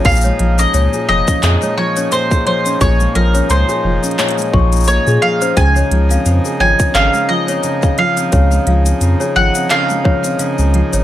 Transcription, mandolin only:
X:1
M:4/4
L:1/16
Q:"Swing 16ths" 1/4=87
K:Db
V:1 name="Mandolin"
f3 e3 e4 d2 c2 c2 | d2 B2 c8 d2 f2 | a6 a2 f2 e4 f2- | f4 z2 g2 f6 z2 |]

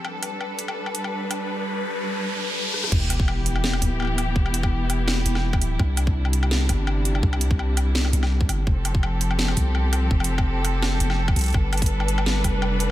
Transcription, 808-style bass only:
X:1
M:4/4
L:1/8
Q:"Swing 16ths" 1/4=167
K:Ephr
V:1 name="808-style bass" clef=bass
z8 | z8 | E,,,4- E,,, D,,,3 | E,,,4- E,,, E,,,2 D,,, |
C,,4- C,, G,,,3 | C,,4- C,, C,,2 G,,, | F,,,4- F,,, C,,3 | F,,,4- F,,, F,,,2 C,, |
G,,,4- G,,, F,,,3 |]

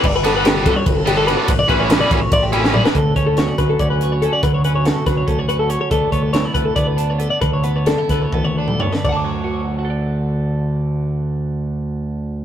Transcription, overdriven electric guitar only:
X:1
M:7/8
L:1/8
Q:1/4=142
K:D
V:1 name="Overdriven electric guitar"
z [D,G,B,D] [D,G,B,D] z2 [D,G,B,D] [D,G,B,D] | z [E,G,CE] [E,G,CE] z2 [E,G,CE] [E,G,CE] | z6 z | z6 z |
z6 z | z6 z | z6 z | z6 z |]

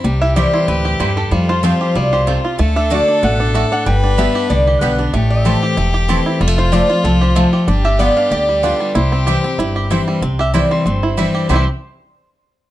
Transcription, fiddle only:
X:1
M:4/4
L:1/8
Q:"Swing" 1/4=189
K:C
V:1 name="Fiddle"
G8 | F8 | A8 | B6- B z |
G8 | F8 | G8 | G6- G z |
z8 | z8 |]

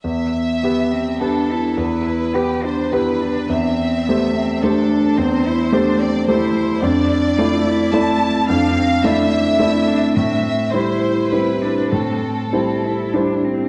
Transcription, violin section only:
X:1
M:3/4
L:1/8
Q:1/4=106
K:Am
V:1 name="Violin section"
e4 A2 | B3 c B2 | e4 A2 | c3 d c2 |
d4 a2 | f2 e4 | e2 c2 B2 | A4 z2 |]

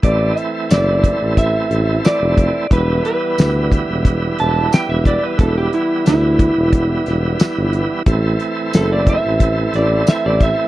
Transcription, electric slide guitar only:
X:1
M:4/4
L:1/16
Q:1/4=90
K:Em
V:1 name="Electric slide guitar"
d2 e2 d4 e4 d4 | B2 B4 z4 a2 g e d B | A G E2 E12 | z4 A d e4 d2 e d e2 |]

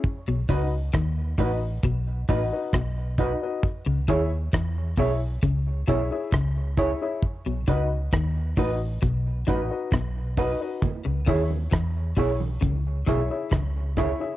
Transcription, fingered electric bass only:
X:1
M:4/4
L:1/16
Q:1/4=67
K:C#m
V:1 name="Fingered electric bass" clef=bass
z B,,, C,,2 D,,2 A,,,2 B,,,2 A,,, z B,,,3 z | z C,, D,,2 E,,2 B,,,2 C,,2 B,,, z C,,3 z | z B,,, C,,2 D,,2 A,,,2 B,,,2 A,,, z B,,,3 z | z C,, D,,2 E,,2 B,,,2 C,,2 B,,, z C,,3 z |]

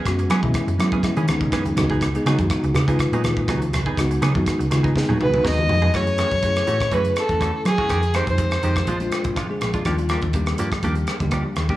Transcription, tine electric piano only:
X:1
M:4/4
L:1/16
Q:"Swing 16ths" 1/4=122
K:C#m
V:1 name="Tine electric piano"
[G,B,CF]2 z [G,B,CE]2 z [G,B,CE]2 [G,B,CE]2 [G,B,CD]4 [G,B,DF]2 | z [G,B,DG] [G,B,DF]2 [G,B,DF]2 z [G,D^EB]6 z3 | [G,B,DF]2 z [G,B,DF]2 z [G,B,D^E]2 [G,B,DG]2 [G,B,DF]6 | [A,CEG]3 z [A,CEG]3 z [A,CEG]2 z [A,CEA]3 z [A,CEG] |
z2 [_A,=C_E=G]3 z [A,CEG]2 z [^G,^B,=D^E]3 z [G,B,D^G]2 z | [=G,^A,=D^E]3 z [G,A,D=G]3 z [G,A,DG]2 z [G,A,DG]3 z [G,A,DG] |]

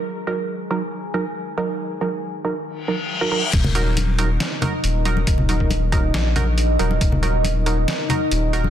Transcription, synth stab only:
X:1
M:4/4
L:1/16
Q:1/4=138
K:Ebm
V:1 name="Synth stab"
[G,EB]2 [G,EB]4 [G,EB] z3 [G,EB] z3 [G,EB]2- | [G,EB]2 [G,EB]4 [G,EB] z3 [G,EB] z2 [G,EB] [G,EB] z | z2 [G,EB]4 [G,EB] z3 [G,EB] z3 [G,EB]2- | [G,EB]2 [G,EB]4 [G,EB] z3 [G,EB] z3 [G,EB]2- |
[G,EB]2 [G,EB]4 [G,EB] z3 [G,EB] z3 [G,EB]2 |]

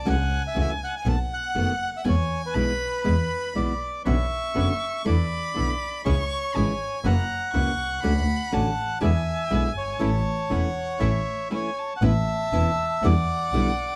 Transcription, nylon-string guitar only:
X:1
M:4/4
L:1/8
Q:1/4=120
K:A
V:1 name="Nylon-string guitar"
[C,E,A,CF] z [C,E,A,CF] z [B,,^D,A,B,F] z [B,,D,A,B,F] z | [B,,E,G,B,E] z [B,,E,G,B,E] z [B,,E,G,B,E] z [B,,E,G,B,E] z | [B,,D,B,CF] z [B,,D,B,CF] z [D,A,B,E] z [D,A,B,E] z | [C,E,G,CE] z [C,E,G,CE] z [C,E,^A,CF] z [C,E,A,CF] z |
[D,A,CF] z [D,A,CF] z [B,,D,G,B,E] z [B,,D,G,B,E] z | [E,A,CE] z [E,A,CE] z [E,A,CE] z [E,A,CE] z | [E,B,CE] z [E,B,CE] z [B,,D,=G,B,E] z [B,,D,G,B,E] z |]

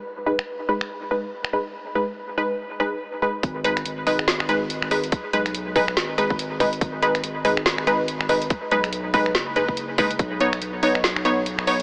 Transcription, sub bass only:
X:1
M:4/4
L:1/8
Q:"Swing 16ths" 1/4=142
K:G#m
V:1 name="Sub bass" clef=bass
z8 | z8 | G,,,2 G,,,6 | z B,,,3 G,,,4 |
G,,,2 G,,,6 | z B,,,3 F,,,4 | B,,,2 B,,,6 |]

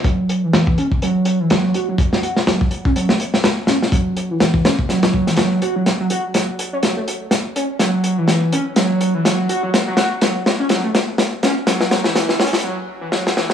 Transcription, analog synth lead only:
X:1
M:4/4
L:1/16
Q:"Swing 16ths" 1/4=124
K:E
V:1 name="Analog synth lead" clef=bass
F,3 E,3 C z F,3 E, F,2 F F, | z F, F z F, z2 C F, A, z4 C z | F,3 E,3 C z F,3 E, F,2 F F, | z F, F z F, z2 C F, A, z4 C z |
F,3 E,3 C z F,3 E, F,2 F F, | z F, F z F, z2 C F, A, z4 C z | F,3 E,3 C z F, z2 E, F, z E, F, |]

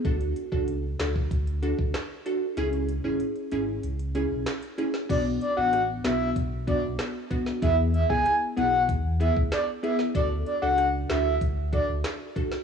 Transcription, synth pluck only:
X:1
M:4/4
L:1/16
Q:1/4=95
K:Bdor
V:1 name="Synth pluck"
[DFA] z2 [DFA] z2 [DFA] z3 [DFA] z3 [DFA] z | [CEG] z2 [CEG] z2 [CEG] z3 [CEG] z3 [CEG] z | [B,DF] z2 [B,DF] z2 [B,DF] z3 [B,DF] z3 [B,DF] z | [B,EG] z2 [B,EG] z2 [B,EG] z3 [B,EG] z3 [B,EG] z |
[DFA] z2 [DFA] z2 [DFA] z3 [DFA] z3 [DFA] z |]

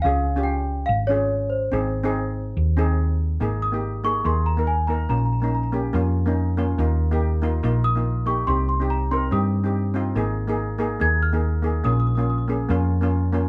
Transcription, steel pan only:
X:1
M:4/4
L:1/16
Q:"Swing 16ths" 1/4=142
K:Ab
V:1 name="Steel pan"
[DFA]2 z [DFG]4 z3 [DFA]4 z2 | [CEA]2 z [CEA]4 z3 [CEA]4 z2 | [B,EA]2 z [B,EG]2 z [B,EA] z [B,EA]2 z [B,EB]2 z [B,EB] z | [B,DF]2 z [B,DE]2 z [B,DG] z [B,DF]2 z [B,DE]2 z [B,DF] z |
[B,EF]2 z [B,EG]2 z [B,EF] z [B,EF]2 z [B,EF]2 z [B,EG] z | [CEG]2 z [CEG]2 z [CEB] z [CEG]2 z [CEG]2 z [CEF] z | [B,EA]2 z [B,EA]2 z [B,EA] z [B,EA]2 z [B,EA]2 z [B,EA] z | [B,DF]2 z [B,DF]2 z [B,DA] z [B,DF]2 z [B,DF]2 z [B,DF] z |]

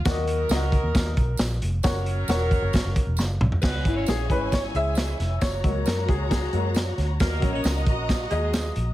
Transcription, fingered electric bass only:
X:1
M:4/4
L:1/16
Q:1/4=134
K:C#dor
V:1 name="Fingered electric bass" clef=bass
D,,4 C,,3 D,, D,,2 B,,,2 A,,,2 ^E,,,2 | F,,,4 E,,,3 F,,, G,,, F,,, z E,,, F,,,2 ^B,,, z | C,,2 G,,,2 A,,,2 G,,,4 C,,4 ^E,,,2 | F,,,2 C,,2 F,,2 C,,4 F,,4 =D,,2 |
D,,2 A,,,2 C,,2 A,,,4 D,,4 A,,,2 |]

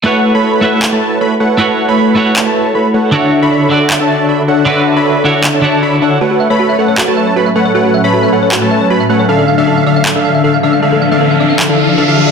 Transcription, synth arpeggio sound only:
X:1
M:4/4
L:1/16
Q:1/4=156
K:A
V:1 name="Synth arpeggio sound"
z16 | z16 | z16 | z16 |
F F e c F e A c F F e c F e A c | F F e c F e A c F F e c F e A c | A A =f e A f d e A A f e A f d e | A A =f e A f d e A A d d A e e d |]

